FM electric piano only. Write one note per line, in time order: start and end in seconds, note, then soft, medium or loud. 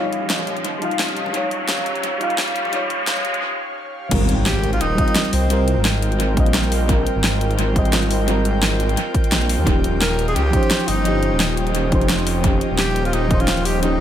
0.00 0.79 G3 loud
0.00 0.81 D#4 medium
0.00 0.83 F4 medium
0.00 1.37 C#5 medium
0.00 0.85 F5 loud
0.79 1.30 G3 loud
0.79 1.32 D#4 medium
0.79 1.33 F4 medium
0.85 1.34 F5 loud
1.31 2.17 G3 medium
1.31 2.18 D#4 medium
1.31 2.19 F4 medium
1.37 2.20 C#5 medium
2.18 2.69 G3 loud
2.18 2.70 D#4 medium
2.18 2.71 F4 medium
2.23 2.72 F5 loud
2.70 3.41 G3 medium
2.70 3.42 D#4 medium
2.70 3.43 F4 medium
2.76 3.44 C#5 medium
4.09 4.94 G3 medium
4.09 4.96 C4 medium
4.09 4.97 F4 medium
4.14 4.98 A#4 medium
4.95 5.46 G3 loud
4.95 5.48 C4 medium
4.95 5.49 F4 medium
5.01 5.50 D#5 loud
5.47 6.33 G3 medium
5.47 6.35 C4 medium
5.47 6.35 F4 medium
5.53 6.36 A#4 loud
6.34 6.85 G3 loud
6.34 6.87 C4 medium
6.34 6.88 F4 loud
6.40 6.88 D#5 loud
6.86 7.72 G3 medium
6.86 7.73 C4 medium
6.86 7.74 F4 medium
6.92 7.75 A#4 loud
7.73 8.24 G3 loud
7.73 8.25 C4 medium
7.73 8.26 F4 medium
7.79 8.27 D#5 loud
8.25 9.11 G3 medium
8.25 9.12 C4 medium
8.25 9.13 F4 medium
8.31 9.14 A#4 loud
9.63 10.49 F3 medium
9.63 10.51 C#4 medium
9.63 10.52 D#4 medium
9.69 10.53 G4 medium
10.50 11.01 F3 loud
10.50 11.03 C#4 medium
10.50 11.04 D#4 medium
10.56 11.05 C5 loud
11.02 11.88 F3 medium
11.02 11.89 C#4 medium
11.02 11.90 D#4 medium
11.08 11.91 G4 loud
11.89 12.40 F3 loud
11.89 12.41 C#4 medium
11.89 12.42 D#4 medium
11.95 12.43 C5 loud
12.41 13.27 F3 medium
12.41 13.28 C#4 medium
12.41 13.29 D#4 medium
12.47 13.30 G4 loud
13.28 13.78 F3 loud
13.28 13.80 C#4 medium
13.28 13.81 D#4 medium
13.34 13.82 C5 loud
13.80 14.01 F3 medium
13.80 14.01 C#4 medium
13.80 14.01 D#4 medium
13.85 14.01 G4 medium